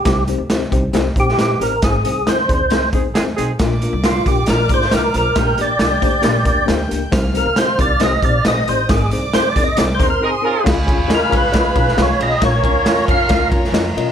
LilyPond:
<<
  \new Staff \with { instrumentName = "Violin section" } { \time 4/4 \key aes \lydian \tempo 4 = 136 r1 | r1 | <d'' d'''>1 | <g'' g'''>1 |
<f'' f'''>2. <ees'' ees'''>4 | <d'' d'''>2~ <d'' d'''>8 <c'' c'''>4. | \key des \mixolydian <aes' f'' ces'''>1 | <f' des'' bes''>1 | }
  \new Staff \with { instrumentName = "Tonewheel organ" } { \time 4/4 \key aes \lydian g'8 r2 g'4 bes'8 | aes'4 c''4. r4. | r4 f'8 g'8 bes'8 c''8 bes'8 bes'8~ | bes'8 d''2~ d''8 r4 |
r8 bes'8 c''8 d''8 ees''8 d''8 ees''8 c''8 | aes'8 r8 \tuplet 3/2 { c''8 d''8 ees''8 d''8 c''8 bes'8 } aes'4 | \key des \mixolydian r4 bes'8 ces''4. des''8 ees''8 | des''4. f''4 r4. | }
  \new Staff \with { instrumentName = "Tine electric piano" } { \time 4/4 \key aes \lydian <c' ees' g' c''>16 r16 <c' ees' g' c''>16 r16 <c' ees' g' c''>16 r16 <c' ees' g' c''>16 r16 <c' ees' g' c''>16 r16 <c' ees' g' c''>16 r16 <c' ees' g' c''>16 r16 <c' ees' g' c''>16 r16 | <c' ees' aes' c''>16 r16 <c' ees' aes' c''>16 r16 <c' ees' aes' c''>16 r16 <c' ees' aes' d''>16 r16 <c' ees' aes' c''>16 r16 <c' ees' aes' c''>16 r16 <c' ees' aes' c''>16 r16 <c' ees' aes' c''>16 r16 | <bes d' f' bes'>16 r16 <bes d' f' bes'>16 r16 <bes d' f' bes'>16 r16 <bes d' f' bes'>16 r16 <bes d' f' bes'>16 r16 <bes d' f' aes'>16 r16 <bes d' f' bes'>16 r16 <bes d' f' c''>16 r16 | <bes d' g' bes'>16 r16 <bes d' g' bes'>16 r16 <bes d' g' bes'>16 r16 <bes d' g' c''>16 r16 <bes d' g' bes'>16 r16 <bes d' g' bes'>16 r16 <bes d' g' c''>16 r16 <bes d' g' bes'>16 r16 |
<c' ees' g' c''>16 r16 <c' ees' g' c''>16 r16 <c' ees' g' c''>16 r16 <c' ees' g' bes'>16 r16 <c' ees' g' c''>16 r16 <c' ees' g' c''>16 r16 <c' ees' g' c''>16 r16 <c' ees' g' d''>16 r16 | <c' ees' aes' bes'>16 r16 <c' ees' aes' c''>16 r16 <c' ees' aes' c''>16 r16 <c' ees' aes' bes'>16 r16 <c' ees' aes' c''>16 r16 <c' ees' aes' bes'>16 r16 <c' ees' aes' bes'>16 r16 <c' ees' aes' bes'>16 r16 | \key des \mixolydian <des' f' aes' des'' f''>16 r16 <des' f' aes' des'' aes''>16 r16 <des' f' aes' des'' ees''>16 r16 <des' f' aes' des'' f''>16 r16 <des' f' aes' des'' ees''>16 r16 <des' f' aes' des'' f''>16 r16 <des' f' aes' des'' f''>16 r16 <des' f' aes' des'' f''>16 r16 | <des' f' bes' des'' f''>16 r16 <des' f' bes' des'' aes''>16 r16 <des' f' bes' des'' f''>16 r16 <des' f' bes' des'' f''>16 r16 <des' f' bes' des'' f''>16 r16 <des' f' bes' des'' f''>16 r16 <des' f' bes' des'' ees''>16 r16 <des' f' bes' des'' ees''>16 r16 | }
  \new Staff \with { instrumentName = "Tine electric piano" } { \clef bass \time 4/4 \key aes \lydian c4. r2 r8 | aes,4. r2 r8 | bes,4. r2 r8 | bes,4. r2 r8 |
c4. r2 r8 | aes,4. r2 r8 | \key des \mixolydian des4. r2 r8 | bes,4. r2 r8 | }
  \new Staff \with { instrumentName = "Horn section" } { \time 4/4 \key aes \lydian r1 | r2 r8 <c' ees' aes'>16 r16 <c' ees' aes'>16 r16 <c' ees' aes'>8 | r1 | r1 |
r1 | r2 r8 <c' ees' bes'>16 r16 <c' ees' bes'>16 r16 <des' f' bes'>8 | \key des \mixolydian <des' f' aes'>2.~ <des' f' aes'>8 r8 | <des' f' bes'>2.~ <des' f' bes'>8 r8 | }
  \new Staff \with { instrumentName = "Upright bass" } { \clef bass \time 4/4 \key aes \lydian c,8. d,8. c,8 c,8 bes,,8 bes,,8 a,,8 | aes,,8 c,8 d,8 ees,8 c,8 ees,8 ees,8 ces,8 | bes,,8. c,8. bes,,8 bes,,8 aes,,8 c,8 ces,8 | bes,,8 bes,,8 c,8 d,8 bes,,8 d,8 d,8 des,8 |
c,8. d,8. c,8 c,8 bes,,8 bes,,8 a,,8 | aes,,8 c,8 d,8 ees,8 c,8 ees,8 r4 | \key des \mixolydian des,8. ees,8. des,8 des,8 ces,8 c,8 ces,8 | bes,,8 des,8 ees,8 f,8 des,8 f,8 f,8 ces,8 | }
  \new DrumStaff \with { instrumentName = "Drums" } \drummode { \time 4/4 <hh bd sn>8 hh8 <hh sn>8 <hh bd>8 <hh sn>8 <hh bd>16 sn16 <hh sn>8 hh8 | <hh bd sn>8 hh8 <hh sn>8 <hh bd>8 <hh sn>8 <hh bd>8 <hh sn>8 hh8 | <hh bd sn>8 hh8 <hh sn>8 <hh bd>8 <hh sn>8 <hh bd>16 sn16 <hh sn>8 hh8 | <hh bd sn>8 hh8 <hh sn>8 <hh bd>8 <hh sn>8 <hh bd>8 <hh sn>8 hh8 |
<hh bd sn>8 hh8 <hh sn>8 <hh bd>8 <hh sn>8 <hh bd>8 <hh sn>8 hh8 | <hh bd sn>8 hh8 <hh sn>8 <hh bd>8 <hh sn>8 <hh bd>8 r4 | <cymc bd sn>8 <bd cymr>8 <cymr sn>8 <bd cymr>8 <bd cymr sn>8 <bd cymr>16 sn16 <cymr sn>8 cymr8 | <bd cymr sn>8 <bd cymr>8 <cymr sn>8 <bd cymr>8 <bd cymr sn>8 <bd cymr>16 sn16 <cymr sn>8 cymr8 | }
>>